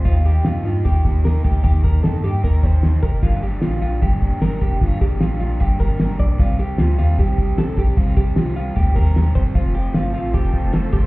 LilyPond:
<<
  \new Staff \with { instrumentName = "String machine" } { \time 4/4 \key g \minor \tempo 4 = 152 r1 | r1 | r1 | r1 |
r1 | r1 | <f' a' c'' a''>1 | }
  \new Staff \with { instrumentName = "Clean electric guitar" } { \time 4/4 \key g \minor f'8 g'8 f'8 f'8 g'4 bes'8 g'8 | g'8 bes'8 a'8 g'8 bes'8 c''4 bes'8 | f'8 g'8 f'8 f'8 g'4 bes'8 g'8 | f'8 g'8 f'8 f'8 g'8 bes'4 d''8 |
f'8 g'8 f'8 f'8 g'4 a'8 g'8 | f'8 g'8 f'8 f'8 g'8 bes'4 c''8 | f'8 g'8 f'8 f'8 g'4 a'8 g'8 | }
  \new Staff \with { instrumentName = "Overdriven electric guitar" } { \time 4/4 \key g \minor <ees bes ees' g'>8 <bes ees' g'>8 <ees bes ees' g'>8 <bes ees' g'>8 <ees bes ees' g'>8 <bes ees' g'>8 <ees bes ees' g'>8 <bes ees' g'>8 | <ees bes ees' g'>8 <bes ees' g'>8 <ees bes ees' g'>8 <bes ees' g'>8 <ees bes ees' g'>8 <bes ees' g'>8 <ees bes ees' g'>8 <bes ees' g'>8 | <g bes d' g'>8 <bes d' g'>8 <g bes d' g'>8 <bes d' g'>8 <g bes d' g'>8 <bes d' g'>8 <g bes d' g'>8 <bes d' g'>8 | <g bes d' g'>8 <bes d' g'>8 <g bes d' g'>8 <bes d' g'>8 <g bes d' g'>8 <bes d' g'>8 <g bes d' g'>8 <bes d' g'>8 |
<c ees g c' g'>8 <g c' g'>8 <c ees g c' g'>8 <g c' g'>8 <ees g c' g'>8 <g c' g'>8 <c ees g c' g'>8 <g c' g'>8 | <c ees g c' g'>8 <g c' g'>8 <c ees g c' g'>8 <g c' g'>8 <ees g c' g'>8 <g c' g'>8 <c ees g c' g'>8 <g c' g'>8 | <f a c' f'>8 <a c' f'>8 <f a c' f'>8 <a c' f'>8 <f a c' f'>8 <a c' f'>8 <f a c' f'>8 <a c' f'>8 | }
  \new Staff \with { instrumentName = "FM bass" } { \clef bass \time 4/4 \key g \minor ees,4 f,8 g,8 ees,8 ees,4 d,8 | ees,4 f,8 g,8 ees,8 ees,4 f,,8 | g,,4 a,,8 bes,,8 g,,8 g,,4 f,,8 | g,,4 a,,8 bes,,8 g,,8 g,,4 bes,,8 |
c,4 d,8 ees,8 c,8 c,4 bes,,8 | c,2 d,8 ees,4 g,,8 | f,,4 g,,8 a,,8 f,,8 f,,4 g,,8 | }
  \new DrumStaff \with { instrumentName = "Drums" } \drummode { \time 4/4 <hh bd>8 hh8 <hh sn>8 hh8 <hh bd>8 <hh bd>8 <hh sn>8 <hh bd>8 | <hh bd>8 <hh bd>8 <hh sn>8 hh8 <hh bd>8 <hh bd>8 <hh sn>8 <hho bd>8 | <cymc bd>8 hh8 <hh sn>8 hh8 <hh bd>8 <hh bd>8 <hh sn>8 <hh bd>8 | <hh bd>8 <hh bd>8 <hh sn>8 hh8 <hh bd>8 <hh bd>8 <hh sn>8 <hh bd>8 |
<hh bd>8 hh8 <hh sn>8 hh8 <hh bd>8 <hh bd>8 <hh sn>8 <hh bd>8 | <hh bd>8 <hh bd>8 <hh sn>8 hh8 <hh bd>8 <hh bd>8 <hh sn>8 <hho bd>8 | <hh bd>8 hh8 <hh sn>8 hh8 <hh bd>8 <hh bd>8 <hh sn>8 <hh bd>8 | }
>>